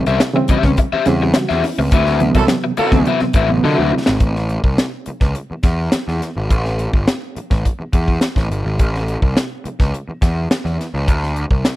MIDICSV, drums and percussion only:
0, 0, Header, 1, 2, 480
1, 0, Start_track
1, 0, Tempo, 571973
1, 1611, Time_signature, 4, 2, 24, 8
1, 9871, End_track
2, 0, Start_track
2, 0, Title_t, "Drums"
2, 53, Note_on_c, 9, 42, 53
2, 137, Note_off_c, 9, 42, 0
2, 168, Note_on_c, 9, 38, 120
2, 173, Note_on_c, 9, 42, 83
2, 252, Note_off_c, 9, 38, 0
2, 257, Note_off_c, 9, 42, 0
2, 402, Note_on_c, 9, 42, 67
2, 411, Note_on_c, 9, 36, 98
2, 486, Note_off_c, 9, 42, 0
2, 495, Note_off_c, 9, 36, 0
2, 526, Note_on_c, 9, 38, 34
2, 531, Note_on_c, 9, 36, 91
2, 610, Note_off_c, 9, 38, 0
2, 615, Note_off_c, 9, 36, 0
2, 647, Note_on_c, 9, 42, 73
2, 653, Note_on_c, 9, 36, 87
2, 731, Note_off_c, 9, 42, 0
2, 737, Note_off_c, 9, 36, 0
2, 886, Note_on_c, 9, 42, 78
2, 887, Note_on_c, 9, 38, 40
2, 970, Note_off_c, 9, 42, 0
2, 971, Note_off_c, 9, 38, 0
2, 1122, Note_on_c, 9, 38, 116
2, 1125, Note_on_c, 9, 42, 85
2, 1206, Note_off_c, 9, 38, 0
2, 1209, Note_off_c, 9, 42, 0
2, 1253, Note_on_c, 9, 38, 38
2, 1337, Note_off_c, 9, 38, 0
2, 1374, Note_on_c, 9, 38, 39
2, 1375, Note_on_c, 9, 46, 86
2, 1458, Note_off_c, 9, 38, 0
2, 1459, Note_off_c, 9, 46, 0
2, 1606, Note_on_c, 9, 42, 83
2, 1611, Note_on_c, 9, 36, 109
2, 1690, Note_off_c, 9, 42, 0
2, 1695, Note_off_c, 9, 36, 0
2, 1732, Note_on_c, 9, 38, 34
2, 1816, Note_off_c, 9, 38, 0
2, 1847, Note_on_c, 9, 42, 65
2, 1931, Note_off_c, 9, 42, 0
2, 1969, Note_on_c, 9, 36, 84
2, 1969, Note_on_c, 9, 42, 50
2, 2053, Note_off_c, 9, 36, 0
2, 2053, Note_off_c, 9, 42, 0
2, 2083, Note_on_c, 9, 38, 113
2, 2088, Note_on_c, 9, 42, 78
2, 2167, Note_off_c, 9, 38, 0
2, 2171, Note_off_c, 9, 42, 0
2, 2325, Note_on_c, 9, 42, 68
2, 2409, Note_off_c, 9, 42, 0
2, 2442, Note_on_c, 9, 38, 34
2, 2450, Note_on_c, 9, 36, 91
2, 2526, Note_off_c, 9, 38, 0
2, 2534, Note_off_c, 9, 36, 0
2, 2564, Note_on_c, 9, 42, 73
2, 2648, Note_off_c, 9, 42, 0
2, 2680, Note_on_c, 9, 38, 37
2, 2764, Note_off_c, 9, 38, 0
2, 2798, Note_on_c, 9, 42, 78
2, 2804, Note_on_c, 9, 36, 94
2, 2882, Note_off_c, 9, 42, 0
2, 2888, Note_off_c, 9, 36, 0
2, 3407, Note_on_c, 9, 38, 87
2, 3491, Note_off_c, 9, 38, 0
2, 3526, Note_on_c, 9, 42, 69
2, 3529, Note_on_c, 9, 36, 93
2, 3609, Note_off_c, 9, 42, 0
2, 3613, Note_off_c, 9, 36, 0
2, 3657, Note_on_c, 9, 38, 34
2, 3741, Note_off_c, 9, 38, 0
2, 3770, Note_on_c, 9, 42, 57
2, 3854, Note_off_c, 9, 42, 0
2, 3892, Note_on_c, 9, 36, 84
2, 3976, Note_off_c, 9, 36, 0
2, 4013, Note_on_c, 9, 38, 103
2, 4018, Note_on_c, 9, 42, 68
2, 4097, Note_off_c, 9, 38, 0
2, 4101, Note_off_c, 9, 42, 0
2, 4245, Note_on_c, 9, 42, 59
2, 4329, Note_off_c, 9, 42, 0
2, 4365, Note_on_c, 9, 38, 34
2, 4372, Note_on_c, 9, 36, 90
2, 4449, Note_off_c, 9, 38, 0
2, 4456, Note_off_c, 9, 36, 0
2, 4489, Note_on_c, 9, 42, 71
2, 4573, Note_off_c, 9, 42, 0
2, 4725, Note_on_c, 9, 42, 70
2, 4726, Note_on_c, 9, 38, 35
2, 4729, Note_on_c, 9, 36, 98
2, 4809, Note_off_c, 9, 42, 0
2, 4810, Note_off_c, 9, 38, 0
2, 4813, Note_off_c, 9, 36, 0
2, 4967, Note_on_c, 9, 38, 109
2, 4970, Note_on_c, 9, 42, 87
2, 5051, Note_off_c, 9, 38, 0
2, 5054, Note_off_c, 9, 42, 0
2, 5101, Note_on_c, 9, 38, 32
2, 5185, Note_off_c, 9, 38, 0
2, 5220, Note_on_c, 9, 38, 34
2, 5221, Note_on_c, 9, 42, 81
2, 5304, Note_off_c, 9, 38, 0
2, 5305, Note_off_c, 9, 42, 0
2, 5458, Note_on_c, 9, 42, 73
2, 5459, Note_on_c, 9, 36, 97
2, 5542, Note_off_c, 9, 42, 0
2, 5543, Note_off_c, 9, 36, 0
2, 5582, Note_on_c, 9, 38, 33
2, 5666, Note_off_c, 9, 38, 0
2, 5698, Note_on_c, 9, 42, 59
2, 5782, Note_off_c, 9, 42, 0
2, 5820, Note_on_c, 9, 36, 87
2, 5903, Note_off_c, 9, 36, 0
2, 5938, Note_on_c, 9, 38, 112
2, 5942, Note_on_c, 9, 42, 68
2, 6022, Note_off_c, 9, 38, 0
2, 6026, Note_off_c, 9, 42, 0
2, 6181, Note_on_c, 9, 42, 59
2, 6265, Note_off_c, 9, 42, 0
2, 6298, Note_on_c, 9, 38, 34
2, 6301, Note_on_c, 9, 36, 89
2, 6382, Note_off_c, 9, 38, 0
2, 6385, Note_off_c, 9, 36, 0
2, 6423, Note_on_c, 9, 42, 65
2, 6424, Note_on_c, 9, 36, 72
2, 6507, Note_off_c, 9, 42, 0
2, 6508, Note_off_c, 9, 36, 0
2, 6655, Note_on_c, 9, 42, 77
2, 6656, Note_on_c, 9, 36, 91
2, 6739, Note_off_c, 9, 42, 0
2, 6740, Note_off_c, 9, 36, 0
2, 6780, Note_on_c, 9, 36, 73
2, 6864, Note_off_c, 9, 36, 0
2, 6891, Note_on_c, 9, 38, 92
2, 6894, Note_on_c, 9, 42, 81
2, 6975, Note_off_c, 9, 38, 0
2, 6978, Note_off_c, 9, 42, 0
2, 7016, Note_on_c, 9, 36, 79
2, 7023, Note_on_c, 9, 38, 34
2, 7100, Note_off_c, 9, 36, 0
2, 7107, Note_off_c, 9, 38, 0
2, 7147, Note_on_c, 9, 42, 79
2, 7231, Note_off_c, 9, 42, 0
2, 7379, Note_on_c, 9, 42, 71
2, 7381, Note_on_c, 9, 36, 89
2, 7463, Note_off_c, 9, 42, 0
2, 7465, Note_off_c, 9, 36, 0
2, 7509, Note_on_c, 9, 38, 32
2, 7593, Note_off_c, 9, 38, 0
2, 7622, Note_on_c, 9, 42, 56
2, 7706, Note_off_c, 9, 42, 0
2, 7740, Note_on_c, 9, 36, 78
2, 7824, Note_off_c, 9, 36, 0
2, 7860, Note_on_c, 9, 38, 105
2, 7864, Note_on_c, 9, 42, 75
2, 7944, Note_off_c, 9, 38, 0
2, 7948, Note_off_c, 9, 42, 0
2, 8102, Note_on_c, 9, 42, 62
2, 8186, Note_off_c, 9, 42, 0
2, 8222, Note_on_c, 9, 36, 93
2, 8222, Note_on_c, 9, 38, 34
2, 8306, Note_off_c, 9, 36, 0
2, 8306, Note_off_c, 9, 38, 0
2, 8345, Note_on_c, 9, 42, 75
2, 8429, Note_off_c, 9, 42, 0
2, 8576, Note_on_c, 9, 36, 91
2, 8578, Note_on_c, 9, 42, 77
2, 8579, Note_on_c, 9, 38, 36
2, 8660, Note_off_c, 9, 36, 0
2, 8662, Note_off_c, 9, 42, 0
2, 8663, Note_off_c, 9, 38, 0
2, 8819, Note_on_c, 9, 38, 103
2, 8823, Note_on_c, 9, 42, 74
2, 8903, Note_off_c, 9, 38, 0
2, 8907, Note_off_c, 9, 42, 0
2, 8944, Note_on_c, 9, 38, 30
2, 9028, Note_off_c, 9, 38, 0
2, 9070, Note_on_c, 9, 38, 36
2, 9071, Note_on_c, 9, 42, 80
2, 9154, Note_off_c, 9, 38, 0
2, 9155, Note_off_c, 9, 42, 0
2, 9299, Note_on_c, 9, 36, 100
2, 9302, Note_on_c, 9, 42, 74
2, 9382, Note_off_c, 9, 36, 0
2, 9386, Note_off_c, 9, 42, 0
2, 9426, Note_on_c, 9, 38, 35
2, 9510, Note_off_c, 9, 38, 0
2, 9536, Note_on_c, 9, 42, 57
2, 9620, Note_off_c, 9, 42, 0
2, 9656, Note_on_c, 9, 36, 79
2, 9740, Note_off_c, 9, 36, 0
2, 9775, Note_on_c, 9, 38, 101
2, 9779, Note_on_c, 9, 42, 74
2, 9859, Note_off_c, 9, 38, 0
2, 9863, Note_off_c, 9, 42, 0
2, 9871, End_track
0, 0, End_of_file